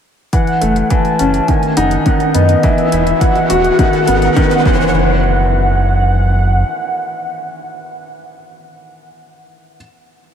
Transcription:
0.33 E3 F#5, kick, closed hi-hat, riser
0.47 closed hi-hat
0.61 F#1 A3, closed hi-hat
0.76 closed hi-hat
0.90 E3 A5, kick, closed hi-hat
1.05 closed hi-hat
1.19 F#1 C#4, closed hi-hat
1.34 closed hi-hat
1.47 D#3 G#5, kick, closed hi-hat
1.63 closed hi-hat
1.76 F#1 D#4 F#5, closed hi-hat
1.91 closed hi-hat
2.06 D#3, kick, closed hi-hat
2.20 closed hi-hat
2.34 F#2 B3 D#5, closed hi-hat
2.49 closed hi-hat
2.63 E3 E5, kick, closed hi-hat
2.78 closed hi-hat
2.92 E1 E4, closed hi-hat
3.07 closed hi-hat
3.20 E3 F#5, kick, closed hi-hat
3.36 closed hi-hat
3.50 E1 F#4, closed hi-hat
3.64 closed hi-hat
3.79 D#3, kick, closed hi-hat
3.93 closed hi-hat
4.08 G#1 B3, closed hi-hat
4.22 closed hi-hat
4.36 D#3, kick, closed hi-hat
4.51 closed hi-hat
4.66 F#1 E3 F#5, kick

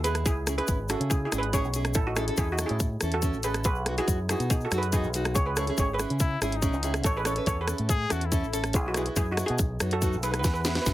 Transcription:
Already playing: D#2
0.04 B3 E4 G#4 B4, closed hi-hat, shaker
0.15 cross-stick, closed hi-hat, shaker
0.25 C#2 E4 G#4, kick, closed hi-hat, shaker
0.47 C#4 E4 G#4, cross-stick, closed hi-hat, shaker
0.58 C#4 E4 G#4 B4, closed hi-hat
0.68 G#1, kick, closed hi-hat, shaker
0.89 C#4 E4 F#4 G#4 A4, cross-stick, closed hi-hat, shaker
1.00 C#3, closed hi-hat
1.10 E4 G#4, kick, closed hi-hat, shaker
1.25 E4 G#4
1.32 G#1 C#4 E4 G#4, cross-stick, closed hi-hat, shaker
1.38 G#4 B4
1.43 closed hi-hat
1.53 C#4 E4 G#4 C#5, kick, closed hi-hat, shaker
1.64 B1, shaker
1.74 C#4 E4 G#4, closed hi-hat, shaker
1.85 cross-stick, closed hi-hat, shaker
1.94 A1 E4 A4, kick, closed hi-hat, shaker
2.07 D#4 F#4
2.16 C#4 E4 G#4 A4, cross-stick, closed hi-hat, shaker
2.28 C#4 E4 A4, closed hi-hat
2.37 E2 E4 G#4, kick, closed hi-hat, shaker
2.52 D#4 F#4
2.58 C#4 E4 A4, cross-stick, closed hi-hat, shaker
2.66 E4 G#4, closed hi-hat
2.70 A2
2.80 kick, closed hi-hat, shaker
3.01 E2 C#4 E4 A4, cross-stick, closed hi-hat, shaker
3.12 F#4 A4, closed hi-hat
3.22 C#4 E4 A4, kick, closed hi-hat, shaker
3.33 A1, shaker
3.43 C#4 E4 G#4 A4 B4, closed hi-hat, shaker
3.54 cross-stick, closed hi-hat, shaker
3.64 B1 G#4 B4, kick, closed hi-hat, shaker
3.75 shaker
3.86 B3 D#4 F#4, cross-stick, closed hi-hat
3.98 B3 D#4 E4 F#4 G#4, closed hi-hat, shaker
4.08 F#2, kick, closed hi-hat, shaker
4.29 B3 D#4 E4 F#4 G#4, cross-stick, closed hi-hat, shaker
4.40 B2, closed hi-hat, shaker
4.50 D#4 G#4, kick, closed hi-hat, shaker
4.61 shaker
4.65 F#4 A4
4.71 F#2 B3 D#4 F#4, cross-stick, closed hi-hat, shaker
4.78 G#4 B4
4.82 closed hi-hat, shaker
4.92 B3 D#4 F#4 G#4, kick, closed hi-hat, shaker
5.03 B1, shaker
5.14 B3 D#4 F#4, closed hi-hat, shaker
5.25 cross-stick, closed hi-hat, shaker
5.35 C#2 G#4 C#5, kick, closed hi-hat, shaker
5.46 G#4 B4
5.56 C#4 E4 G#4 A4 C#5, cross-stick, closed hi-hat, shaker
5.67 C#4 E4 G#4, closed hi-hat
5.78 G#1 G#4 C#5, kick, closed hi-hat, shaker
5.93 G#4 B4
5.99 C#4 E4 G#4, cross-stick, closed hi-hat, shaker
6.10 C#3, closed hi-hat
6.20 E4, kick, closed hi-hat, shaker
6.41 G#1 C#4 E4 G#4, cross-stick, closed hi-hat, shaker
6.52 D#4, closed hi-hat
6.62 C#4 E4 G#4, kick, closed hi-hat, shaker
6.73 C#2, shaker
6.83 C#4 E4 G#4, closed hi-hat, shaker
6.94 cross-stick, closed hi-hat, shaker
7.04 A1 A4 C#5, kick, closed hi-hat, shaker
7.17 G#4 B4
7.25 C#4 E4 A4 C#5, cross-stick, closed hi-hat, shaker
7.36 C#4 E4 B4, closed hi-hat
7.46 E2 A4 C#5, kick, closed hi-hat, shaker
7.61 G#4 B4
7.67 C#4 E4 A4, cross-stick, closed hi-hat, shaker
7.78 A2, closed hi-hat
7.89 G#4, kick, closed hi-hat, shaker
8.09 E2 C#4 E4 F#4 A4, cross-stick, closed hi-hat, shaker
8.21 closed hi-hat
8.26 E4
8.32 C#4 E4 A4, kick, closed hi-hat, shaker
8.44 A1, shaker
8.53 C#4 E4 A4, closed hi-hat, shaker
8.64 cross-stick, closed hi-hat, shaker
8.73 B1 E4 G#4, kick, closed hi-hat, shaker
8.86 D#4 F#4
8.94 B3 E4 F#4 G#4, cross-stick, closed hi-hat, shaker
9.06 B3 E4 F#4, closed hi-hat
9.16 F#2 E4 G#4, kick, closed hi-hat, shaker
9.31 D#4 F#4
9.37 B3 E4 F#4, cross-stick, closed hi-hat, shaker
9.46 B2 D#4 G#4, closed hi-hat
9.58 B1, kick, closed hi-hat, shaker
9.80 F#2 B3 D#4 F#4, cross-stick, closed hi-hat, shaker
9.91 F#4 A4, closed hi-hat
10.02 B3 D#4 F#4, kick, closed hi-hat, shaker
10.13 B1, shaker
10.23 B3 D#4 G#4 B4, closed hi-hat, shaker
10.31 B4, cross-stick, closed hi-hat, shaker
10.39 B4
10.44 E2 B4, kick, snare, closed hi-hat, shaker
10.54 B4, shaker
10.61 B4, shaker
10.65 B3 E4 G#4 B4, snare, closed hi-hat
10.75 B3 E4 F#4 B4, snare, closed hi-hat
10.82 B4
10.86 B1, kick, snare, closed hi-hat, shaker

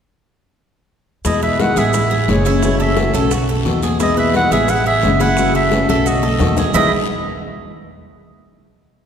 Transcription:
1.25 E2 B2 G#3 B3 E4 D#5, high bongo, high conga, long guiro, maracas
1.42 B4 E5, high bongo, maracas
1.59 B2 D#3 G#3 B3 E4 F#5, high bongo, high conga, short guiro, maracas
1.76 A1 G#3 B3 E4 G#4 E5, high bongo, high conga, short guiro, maracas
1.93 E4, muted nylon-string guitar stroke, high bongo, high conga, long guiro, maracas
2.11 G#4, high conga, maracas
2.28 F#1 E3 G#3 C#4 E4 C#5, high bongo, low bongo, high conga, short guiro, maracas
2.45 G#3 C#4 E4, high bongo, high conga, short guiro, maracas
2.62 C#3 E3 A3 C#4 F#4 C#5, high bongo, high conga, long guiro, maracas
2.80 A4 E5, high bongo, high conga, maracas
2.96 C#3 E3 A3 C#4 F#4, high bongo, high conga, short guiro, maracas
3.14 B1 A3 C#4 F#4 A4, high conga, short guiro, maracas
3.31 F#4, muted nylon-string guitar stroke, high bongo, high conga, long guiro, maracas
3.48 A4, high conga, maracas
3.65 E2 B2 D#3 A3 B3 F#4, high bongo, low bongo, high conga, short guiro, maracas
3.82 A3 B3 F#4 G#4, high bongo, high conga, short guiro, maracas
3.99 B2 G#3 B3 E4 D#5, high bongo, high conga, long guiro, maracas
4.17 B4 E5, high bongo, high conga, maracas
4.34 B2 D#3 G#3 B3 E4 F#5, high bongo, high conga, short guiro, maracas
4.51 A1 G#3 B3 E4 G#4 E5, high bongo, high conga, short guiro, maracas
4.68 E4 F#5, muted nylon-string guitar stroke, high bongo, long guiro, maracas
4.86 G#4 E5, high conga, maracas
5.03 F#1 E3 G#3 C#4 E4, high bongo, low bongo, high conga, short guiro, maracas
5.20 G#3 C#4 E4 F#5, high bongo, high conga, short guiro, maracas
5.37 C#3 E3 A3 C#4 F#4, high bongo, high conga, long guiro, maracas
5.55 A4 E5, high bongo, high conga, maracas
5.71 C#3 E3 A3 C#4 F#4, high bongo, high conga, short guiro, maracas
5.88 B1 A3 C#4 F#4 A4 E5, high bongo, short guiro, maracas
6.06 F#4 D#5, muted nylon-string guitar stroke, high conga, long guiro, maracas
6.22 A4, low bongo, high conga, maracas
6.40 E2 B2 D#3 A3 B3 F#4, low bongo, short guiro, maracas
6.57 A3 B3 F#4 G#4, low bongo, low conga, short guiro, maracas
6.74 E2 B2 D#3 G#3 B3 E4 B4 D#5 E5, low bongo, low conga, long guiro, maracas

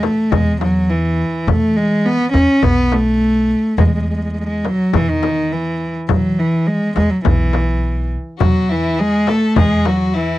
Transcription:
0.03 A3, tombak tek, frame drum
0.31 E2 G#3, frame drum, tombak dum
0.61 F#3, tombak tek, frame drum
0.90 E3, tombak ka
1.47 E3 A3, frame drum, tombak dum
1.76 G#3
2.06 B3, tombak ka
2.20 tombak ka
2.33 E2 C#4, tombak tek, frame drum
2.63 B1 B3, frame drum, tombak dum
2.92 A3, tombak tek, frame drum
3.21 tombak ka
3.78 E2 G#3, frame drum, tombak dum
3.87 G#3
3.95 G#3
4.02 G#3
4.09 G#3
4.16 G#3
4.24 G#3
4.32 G#3
4.37 G#3, tombak ka
4.47 G#3, tombak ka
4.65 F#3, tombak tek, frame drum
4.93 E2 E3, frame drum, tombak dum
5.10 D#3
5.23 tombak tek, frame drum
5.52 E3, tombak ka
6.09 E3 F#3, frame drum, tombak dum
6.39 E3, tombak ka
6.53 tombak ka
6.67 G#3, tombak ka
6.96 E2 G#3, tombak tek, frame drum
7.10 F#3
7.25 B1 E3, frame drum, tombak dum
7.40 tombak ka
7.53 tombak tek, frame drum
8.39 E2 F#3 F#4, frame drum, tombak dum
8.69 E3 E4
8.99 G#3 G#4, tombak ka
9.27 A3 A4, tombak tek, frame drum
9.56 E2 G#3 G#4, frame drum, tombak dum
9.85 F#3 F#4, tombak tek, frame drum
10.14 E3 E4, tombak ka

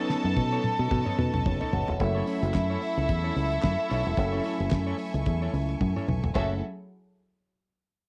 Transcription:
Already playing: F#3 B3 C#4 D#4 A4 B4 D#5 A5 C#6
0.09 B3 D#4 A4 C#5, snare
0.24 F#2, muted clean electric guitar stroke
0.37 B2, muted clean electric guitar stroke, kick, high tom
0.52 B3 D#4 A4 C#5
0.64 muted clean electric guitar stroke, high tom
0.79 B2, muted clean electric guitar stroke
0.91 B2, muted clean electric guitar stroke, kick, mid tom
1.05 B3 D#4 A4 C#5, mid tom
1.18 B2 B4, muted clean electric guitar stroke, mid tom
1.34 B1, muted clean electric guitar stroke, mid tom
1.46 F#1 C#5, muted clean electric guitar stroke, kick, mid tom
1.61 B3 D#4 A4 C#5 D#5, floor tom
1.73 F#1 F#5, muted clean electric guitar stroke, floor tom
1.88 E1, muted clean electric guitar stroke, floor tom
2.00 F#1 F#3 A3 C#4 E4 A4 E5 F#5 C#6, muted clean electric guitar stroke, kick, closed hi-hat
2.15 C#4 E4 A4 C#5
2.27 C#4 E4 A4 C#5, open hi-hat
2.43 F#1, muted clean electric guitar stroke, closed hi-hat
2.54 F#2, muted clean electric guitar stroke, kick, snare, clap, closed hi-hat
2.70 C#4 E4 A4 C#5
2.82 muted clean electric guitar stroke, open hi-hat
2.97 C#2, muted clean electric guitar stroke, closed hi-hat
3.09 E2, muted clean electric guitar stroke, kick, closed hi-hat
3.24 C#4 E4 A4 C#5
3.36 C#2, muted clean electric guitar stroke, open hi-hat
3.51 muted clean electric guitar stroke, closed hi-hat
3.62 F#2, muted clean electric guitar stroke, kick, snare, clap, closed hi-hat
3.79 muted clean electric guitar stroke
3.89 B1 C#4 E4 A4 C#5, open hi-hat
4.05 E1, muted clean electric guitar stroke, closed hi-hat
4.17 F#1 F#3 A3 C#4 E4 A4 G#5, muted clean electric guitar stroke, kick, closed hi-hat
4.32 C#4 E4 A4 C#5
4.44 C#4 E4 A4 C#5, open hi-hat
4.59 F#1, muted clean electric guitar stroke, closed hi-hat
4.71 F#2, muted clean electric guitar stroke, kick, snare, clap, closed hi-hat
4.87 C#4 E4 A4 C#5
4.98 muted clean electric guitar stroke, open hi-hat
5.14 C#2, muted clean electric guitar stroke, closed hi-hat
5.26 E2, muted clean electric guitar stroke, kick, closed hi-hat
5.42 C#4 E4 A4 C#5
5.53 C#2, muted clean electric guitar stroke, open hi-hat
5.69 muted clean electric guitar stroke, closed hi-hat
5.81 F#2, muted clean electric guitar stroke, kick, high tom
5.96 C#4 E4 A4 C#5, mid tom
6.08 B1, muted clean electric guitar stroke, mid tom
6.24 E1, muted clean electric guitar stroke, floor tom
6.34 F#1 F#3 A3 C#4 E4 F#4 G#4 A4 C#5 E5 F#5, kick, floor tom

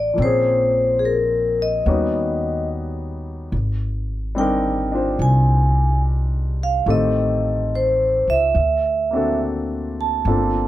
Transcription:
Already playing: A1 E3 F3 A3 C4 G4 D5
0.14 F3 A#3
0.18 A#1 C4
0.22 C#4 G#4 C5
0.99 G#4
1.05 A#4
1.62 D#5
1.86 D#2 G3 B3 C#4 D#4 F#4
3.52 G#1
4.35 G3 C4 D4 G5
4.39 D#4 A#4
4.92 D4 F4 C5
5.19 C2 G#5
6.63 F5
6.86 A1 D#3 A3 C4 G4 A4
6.90 D#5
7.75 C5
8.27 C#2 E5
8.55 D2
9.11 A#3 C4 D4 F#4
9.16 A4
10.01 A5
10.25 G1 A#3 C4 D4 F4 A4

